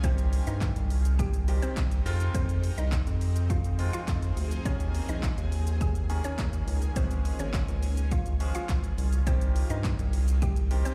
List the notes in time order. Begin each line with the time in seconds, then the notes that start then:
0.04 C2 C3 D#3 G3 C4 D#4 G4 C5, kick, closed hi-hat, shaker
0.18 closed hi-hat, shaker
0.33 open hi-hat, shaker
0.47 G2 D#4 D#5, closed hi-hat, shaker
0.61 kick, clap, closed hi-hat, shaker
0.76 C2, closed hi-hat, shaker
0.90 open hi-hat, shaker
1.05 closed hi-hat, shaker
1.19 G4 G5, kick, closed hi-hat, shaker
1.34 closed hi-hat, shaker
1.48 D#3 G3 C4 G4, open hi-hat, shaker
1.62 C4 C5, closed hi-hat, shaker
1.77 C2, kick, clap, closed hi-hat, shaker
1.91 closed hi-hat, shaker
2.05 F2 D#3 F3 G#3 C4 F4 G#4, open hi-hat, shaker
2.20 closed hi-hat, shaker
2.34 F2 C4 C5, kick, closed hi-hat, shaker
2.49 closed hi-hat, shaker
2.64 open hi-hat, shaker
2.78 C2 D#4 D#5, closed hi-hat, shaker
2.92 kick, clap, closed hi-hat, shaker
3.07 F2, closed hi-hat, shaker
3.21 open hi-hat, shaker
3.36 closed hi-hat, shaker
3.50 F4 F5, kick, closed hi-hat, shaker
3.64 closed hi-hat, shaker
3.79 D#3 G#3 C4 F4, open hi-hat, shaker
3.93 F4 F5, closed hi-hat, shaker
4.08 F2, kick, clap, closed hi-hat, shaker
4.22 closed hi-hat, shaker
4.37 D2, open hi-hat, shaker
4.51 closed hi-hat, shaker
4.65 D#2 D#3 A#3 C#4 G#4 C#5, kick, closed hi-hat, shaker
4.80 closed hi-hat, shaker
4.95 open hi-hat, shaker
5.09 A#1 D#4 D#5, closed hi-hat, shaker
5.23 kick, clap, closed hi-hat, shaker
5.38 D#2, closed hi-hat, shaker
5.52 open hi-hat, shaker
5.67 closed hi-hat, shaker
5.81 G#4 G#5, kick, closed hi-hat, shaker
5.95 closed hi-hat, shaker
6.09 D#3 A#3 C#4 G#4, open hi-hat, shaker
6.24 C#4 C#5, closed hi-hat, shaker
6.38 D#2, kick, clap, closed hi-hat, shaker
6.53 closed hi-hat, shaker
6.67 C#2, open hi-hat, shaker
6.82 closed hi-hat, shaker
6.96 C#2 C#3 F3 G#3 C4 C#4 F4 G#4 C5, kick, closed hi-hat, shaker
7.11 closed hi-hat, shaker
7.25 open hi-hat, shaker
7.39 G#1 C#4 C#5, closed hi-hat, shaker
7.54 kick, clap, closed hi-hat, shaker
7.68 C#2, closed hi-hat, shaker
7.83 open hi-hat, shaker
7.97 closed hi-hat, shaker
8.12 F4 F5, kick, closed hi-hat, shaker
8.26 closed hi-hat, shaker
8.40 F3 G#3 C#4 G#4, open hi-hat, shaker
8.55 F4 F5, closed hi-hat, shaker
8.69 C#2, kick, clap, closed hi-hat, shaker
8.84 closed hi-hat, shaker
8.98 C2, open hi-hat, shaker
9.13 closed hi-hat, shaker
9.26 C2 C3 D#3 G3 C4 D#4 G4 C5, kick, closed hi-hat, shaker
9.41 closed hi-hat, shaker
9.56 open hi-hat, shaker
9.70 G2 D#4 D#5, closed hi-hat, shaker
9.84 kick, clap, closed hi-hat, shaker
9.99 C2, closed hi-hat, shaker
10.13 open hi-hat, shaker
10.28 closed hi-hat, shaker
10.42 G4 G5, kick, closed hi-hat, shaker
10.56 closed hi-hat, shaker
10.71 D#3 G3 C4 G4, open hi-hat, shaker
10.85 C4 C5, closed hi-hat, shaker